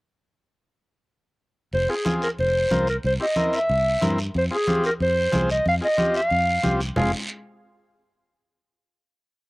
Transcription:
1.73 1.86 F1 medium
1.73 1.92 C5 medium
1.73 high conga soft
1.73 long guiro medium
1.89 1.95 C4 medium
1.89 1.95 F4 medium
1.89 1.95 G#4 medium
1.89 2.22 G#4 medium
2.05 2.28 C4 medium
2.05 2.28 F4 medium
2.05 2.29 G#4 medium
2.05 high conga medium
2.05 short guiro medium
2.22 2.30 A#4 medium
2.22 short guiro medium
2.39 2.65 F1 medium
2.39 2.85 C5 medium
2.39 high conga soft
2.39 long guiro medium
2.71 2.97 C2 medium
2.71 2.88 C4 medium
2.71 2.88 F4 medium
2.71 2.88 A#4 medium
2.71 high conga medium
2.71 short guiro medium
2.87 2.96 A#4 medium
2.87 short guiro medium
3.03 3.17 C2 medium
3.03 3.13 C5 medium
3.03 high conga soft
3.03 long guiro medium
3.20 3.26 C4 medium
3.20 3.26 E4 medium
3.20 3.26 G4 medium
3.20 3.57 D#5 medium
3.36 3.59 C4 medium
3.36 3.59 E4 medium
3.36 3.59 A#4 medium
3.36 high conga medium
3.36 short guiro medium
3.53 4.20 E5 loud
3.53 short guiro medium
3.69 3.95 C2 medium
3.69 high conga soft
3.69 long guiro medium
4.01 4.29 G2 medium
4.01 4.19 C4 medium
4.01 4.19 E4 medium
4.01 4.19 A#4 medium
4.01 high conga medium
4.01 short guiro medium
4.18 short guiro medium
4.34 4.48 F2 medium
4.34 4.44 C5 medium
4.34 high conga soft
4.34 long guiro medium
4.51 4.57 C4 medium
4.51 4.57 F4 medium
4.51 4.57 G#4 medium
4.51 4.83 G#4 medium
4.67 4.90 C4 medium
4.67 4.90 F4 medium
4.67 4.91 G4 medium
4.67 high conga medium
4.67 short guiro medium
4.84 4.93 A#4 medium
4.84 short guiro medium
5.00 5.26 F2 medium
5.00 5.47 C5 loud
5.00 high conga soft
5.00 long guiro medium
5.32 5.59 C2 medium
5.32 5.50 C4 medium
5.32 5.50 F4 medium
5.32 5.50 G#4 medium
5.32 high conga medium
5.32 short guiro medium
5.50 5.66 D#5 medium
5.50 short guiro medium
5.65 5.79 F2 medium
5.65 5.75 F5 medium
5.65 high conga soft
5.65 long guiro medium
5.81 5.87 C4 medium
5.81 5.87 F4 medium
5.81 5.88 G#4 medium
5.81 6.14 D#5 loud
5.97 6.21 C4 medium
5.97 6.21 F4 medium
5.97 6.21 G4 medium
5.97 high conga medium
5.97 short guiro medium
6.14 6.77 F5 medium
6.14 short guiro medium
6.30 6.57 F2 medium
6.30 high conga soft
6.30 long guiro medium
6.63 6.90 C2 medium
6.63 6.81 C4 medium
6.63 6.81 F4 medium
6.63 6.81 G4 medium
6.63 high conga medium
6.63 short guiro medium
6.80 short guiro medium
6.96 7.12 F1 medium
6.96 7.12 C4 medium
6.96 7.12 F4 medium
6.96 7.12 G#4 medium
6.96 7.12 F5 medium
6.96 low conga medium
6.96 long guiro medium

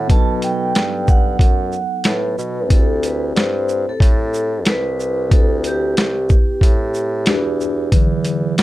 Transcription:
0.08 0.72 B2 loud
0.08 2.67 F#3 medium
0.08 2.65 B3 medium
0.08 0.17 D4 soft
0.08 0.25 A5 loud
0.08 kick loud
0.08 closed hi-hat medium
0.12 2.69 D#4 medium
0.12 2.68 A4 medium
0.42 1.10 G5 loud
0.42 closed hi-hat medium
0.42 shaker medium
0.75 1.37 G2 medium
0.75 snare loud
0.75 closed hi-hat medium
1.08 2.09 F#5 loud
1.08 kick medium
1.08 shaker medium
1.39 1.77 F#2 medium
1.39 kick medium
1.39 closed hi-hat medium
1.72 shaker soft
2.04 2.36 A2 medium
2.04 2.73 B4 medium
2.04 snare loud
2.04 closed hi-hat medium
2.38 2.72 B2 medium
2.38 shaker medium
2.69 3.32 D2 loud
2.69 5.27 C4 medium
2.69 5.27 E4 medium
2.69 5.28 G4 medium
2.69 3.05 A4 medium
2.69 kick medium
2.69 closed hi-hat loud
2.73 5.29 A4 medium
3.03 3.19 B4 medium
3.03 closed hi-hat medium
3.03 shaker medium
3.36 3.85 G2 loud
3.36 3.85 C5 medium
3.36 snare loud
3.36 closed hi-hat medium
3.69 shaker medium
3.88 3.93 A2 medium
3.88 4.69 A4 medium
4.00 4.68 A2 loud
4.00 kick medium
4.00 closed hi-hat medium
4.34 shaker medium
4.65 5.28 C2 medium
4.65 5.28 B4 medium
4.65 snare loud
4.65 closed hi-hat medium
5.00 shaker medium
5.29 5.93 D2 loud
5.29 7.22 C4 medium
5.29 7.23 E4 medium
5.29 7.24 G4 medium
5.29 kick loud
5.29 closed hi-hat medium
5.34 5.48 A4 medium
5.34 7.24 B4 medium
5.64 7.25 G4 medium
5.64 closed hi-hat medium
5.64 shaker medium
5.97 6.34 C2 medium
5.97 snare loud
5.97 closed hi-hat medium
6.29 kick medium
6.29 shaker medium
6.61 7.24 A2 medium
6.61 kick medium
6.61 closed hi-hat loud
6.94 shaker soft
7.26 7.89 E2 loud
7.26 7.92 D4 medium
7.26 7.92 F#4 medium
7.26 7.93 G4 medium
7.26 7.36 A#4 medium
7.26 snare loud
7.26 closed hi-hat medium
7.36 7.96 B4 medium
7.60 shaker medium
7.92 8.54 E2 medium
7.92 8.63 D3 medium
7.92 8.63 E3 medium
7.92 8.63 F#3 soft
7.92 kick loud
7.92 closed hi-hat loud
8.25 closed hi-hat medium
8.25 shaker medium
8.58 8.63 F#2 medium
8.58 snare loud
8.58 closed hi-hat medium

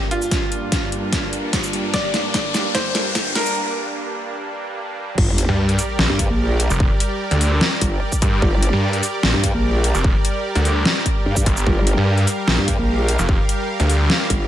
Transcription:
0.00 5.14 G2 medium
0.00 5.14 G3 medium
0.00 5.14 A#3 medium
0.00 5.14 D4 medium
0.00 riser medium
0.11 1.86 F4 medium
0.11 closed hi-hat medium
0.22 shaker medium
0.31 kick loud
0.31 snare medium
0.31 closed hi-hat medium
0.52 closed hi-hat soft
0.72 kick loud
0.72 snare medium
0.72 closed hi-hat medium
0.92 closed hi-hat medium
1.13 kick medium
1.13 snare medium
1.13 closed hi-hat medium
1.33 closed hi-hat medium
1.53 kick medium
1.53 snare medium
1.53 closed hi-hat medium
1.64 shaker medium
1.73 closed hi-hat medium
1.94 2.67 D5 loud
1.94 kick loud
1.94 snare medium
1.94 closed hi-hat medium
2.14 snare medium
2.14 closed hi-hat medium
2.34 kick loud
2.34 snare medium
2.34 closed hi-hat medium
2.54 snare medium
2.54 closed hi-hat medium
2.54 shaker medium
2.75 3.28 C5 medium
2.75 kick medium
2.75 snare medium
2.75 closed hi-hat medium
2.95 snare medium
2.95 closed hi-hat medium
3.15 kick medium
3.15 snare medium
3.15 closed hi-hat medium
3.35 3.56 A#4 medium
3.35 snare medium
3.35 closed hi-hat medium
3.46 shaker medium
5.18 5.47 G1 loud
5.18 14.48 G3 medium
5.18 14.48 G4 medium
5.18 14.48 A#4 medium
5.18 11.65 D5 medium
5.18 kick loud
5.18 crash loud
5.18 sub drop medium
5.38 closed hi-hat medium
5.49 5.77 G2 loud
5.69 closed hi-hat soft
5.79 open hi-hat loud
5.79 shaker medium
5.99 6.08 A#1 loud
5.99 snare loud
6.10 6.28 G2 loud
6.19 kick medium
6.19 closed hi-hat medium
6.30 6.69 A#1 loud
6.60 closed hi-hat medium
6.70 6.89 F1 loud
6.70 shaker medium
6.80 kick loud
7.00 closed hi-hat medium
7.31 7.60 D2 medium
7.31 closed hi-hat soft
7.41 open hi-hat loud
7.61 snare loud
7.81 8.00 G1 medium
7.81 kick medium
7.81 closed hi-hat medium
8.12 kick medium
8.12 shaker medium
8.22 8.41 G2 loud
8.22 kick loud
8.22 closed hi-hat medium
8.42 8.71 G1 loud
8.42 kick loud
8.63 closed hi-hat medium
8.73 9.01 G2 loud
8.93 closed hi-hat soft
9.03 open hi-hat medium
9.03 shaker medium
9.23 9.32 A#1 loud
9.23 snare loud
9.34 9.52 G2 loud
9.44 kick medium
9.44 closed hi-hat medium
9.54 9.93 A#1 loud
9.84 closed hi-hat medium
9.95 10.13 F1 loud
9.95 shaker medium
10.04 kick loud
10.25 closed hi-hat medium
10.55 10.84 D2 loud
10.55 closed hi-hat soft
10.65 open hi-hat medium
10.85 snare loud
11.06 kick medium
11.06 closed hi-hat medium
11.26 11.45 G2 loud
11.37 kick medium
11.37 shaker medium
11.46 11.65 G1 loud
11.46 kick loud
11.46 closed hi-hat medium
11.57 shaker medium
11.67 11.96 G1 loud
11.67 14.48 F5 medium
11.67 kick loud
11.87 closed hi-hat medium
11.97 12.26 G2 loud
12.18 closed hi-hat soft
12.27 open hi-hat medium
12.27 shaker medium
12.48 12.56 A#1 loud
12.48 snare loud
12.58 12.77 G2 loud
12.68 kick medium
12.68 closed hi-hat medium
12.78 13.17 A#1 loud
13.08 closed hi-hat medium
13.19 13.38 F1 loud
13.19 shaker medium
13.29 kick loud
13.49 closed hi-hat medium
13.80 14.08 D2 loud
13.80 closed hi-hat soft
13.90 open hi-hat medium
14.10 snare loud
14.30 14.48 G1 loud
14.30 kick medium
14.30 closed hi-hat medium

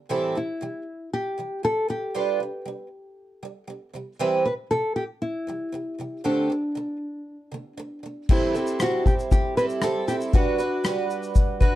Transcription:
0.09 0.34 A2 medium
0.09 0.35 E3 medium
0.09 0.36 G3 medium
0.09 0.36 C4 medium
0.09 0.36 E4 medium
0.09 0.36 A4 medium
0.35 0.56 A2 soft
0.35 0.57 E3 soft
0.35 0.57 G3 soft
0.35 1.09 E4 medium
0.61 0.81 A2 soft
0.61 0.82 E3 medium
0.61 0.83 G3 medium
1.14 1.64 G4 medium
1.38 1.58 A2 soft
1.38 1.59 E3 soft
1.38 1.59 G3 soft
1.63 1.84 A2 soft
1.63 1.84 E3 soft
1.63 1.85 G3 medium
1.63 1.88 A4 medium
1.88 2.09 A2 soft
1.88 2.10 E3 soft
1.88 2.10 G3 soft
1.88 3.90 G4 medium
2.15 2.39 G3 medium
2.15 2.41 D4 medium
2.15 2.41 F4 medium
2.15 2.41 B4 medium
2.40 2.61 G3 soft
2.40 2.62 D4 soft
2.65 2.86 G3 medium
2.65 2.87 D4 medium
3.43 3.63 G3 medium
3.43 3.64 D4 medium
3.67 3.88 G3 medium
3.67 3.90 D4 medium
3.94 4.14 C3 soft
3.94 4.15 E3 soft
3.94 4.15 G3 soft
4.19 4.44 C3 medium
4.19 4.45 E3 medium
4.19 4.45 G3 medium
4.19 4.46 C4 medium
4.19 4.46 E4 medium
4.19 4.46 B4 medium
4.45 4.66 C3 soft
4.45 4.66 E3 soft
4.45 4.67 G3 soft
4.45 4.52 B4 medium
4.71 4.91 C3 medium
4.71 4.92 E3 medium
4.71 4.92 G3 medium
4.71 4.95 A4 medium
4.96 5.03 G4 medium
5.22 6.25 E4 medium
5.47 5.68 C3 soft
5.47 5.68 E3 soft
5.47 5.69 G3 soft
5.72 5.93 C3 soft
5.72 5.94 E3 soft
5.72 5.95 G3 medium
5.98 6.19 C3 soft
5.98 6.20 E3 soft
5.98 6.20 G3 medium
6.24 6.48 D3 medium
6.24 6.50 A3 medium
6.24 6.50 C4 medium
6.24 7.74 D4 medium
6.24 6.50 G4 medium
6.24 6.51 A4 medium
6.50 6.70 D3 soft
6.50 6.71 A3 medium
6.75 6.96 D3 medium
6.75 6.97 A3 medium
7.52 7.72 D3 soft
7.52 7.74 A3 soft
7.77 7.98 D3 medium
7.77 7.99 A3 medium
8.03 8.24 D3 soft
8.03 8.25 A3 soft
8.29 8.55 A2 medium
8.29 8.55 E3 medium
8.29 8.55 G3 medium
8.29 8.55 C4 medium
8.29 8.54 E4 medium
8.29 8.83 E4 medium
8.29 8.53 A4 medium
8.29 kick loud
8.29 crash medium
8.54 8.79 G3 soft
8.54 8.80 C4 soft
8.54 8.80 E4 medium
8.54 8.80 A4 soft
8.54 shaker soft
8.67 shaker medium
8.80 9.59 G3 medium
8.80 9.57 C4 medium
8.80 9.57 E4 medium
8.80 9.06 F#4 medium
8.80 9.56 A4 medium
8.80 cross-stick loud
8.80 shaker medium
9.06 9.13 G4 medium
9.06 kick medium
9.06 shaker medium
9.19 shaker soft
9.31 9.57 G4 medium
9.31 kick medium
9.31 shaker medium
9.57 9.81 G3 soft
9.57 9.82 C4 soft
9.57 9.82 E4 medium
9.57 9.83 A4 medium
9.57 9.64 B4 medium
9.57 shaker soft
9.69 shaker soft
9.82 10.08 G3 medium
9.82 10.08 C4 medium
9.82 10.07 E4 medium
9.82 10.08 A4 medium
9.82 10.06 A4 medium
9.82 cross-stick loud
9.82 shaker medium
10.08 10.32 G3 soft
10.08 10.33 C4 soft
10.08 10.34 E4 soft
10.08 10.15 G4 medium
10.08 10.33 A4 medium
10.08 shaker medium
10.21 shaker soft
10.33 10.59 G3 medium
10.33 10.59 D4 medium
10.33 10.59 F#4 medium
10.33 11.07 F#4 medium
10.33 10.57 B4 medium
10.33 kick loud
10.33 shaker medium
10.58 10.84 D4 soft
10.58 10.84 F#4 soft
10.58 10.84 B4 medium
10.58 shaker medium
10.84 11.65 G3 medium
10.84 11.61 D4 medium
10.84 11.60 F#4 medium
10.84 11.60 B4 medium
10.84 cross-stick loud
10.84 shaker medium
11.10 shaker medium
11.23 shaker soft
11.35 kick medium
11.35 shaker medium
11.60 11.75 D4 medium
11.60 11.75 F#4 medium
11.60 11.75 B4 medium
11.60 kick medium
11.60 shaker soft

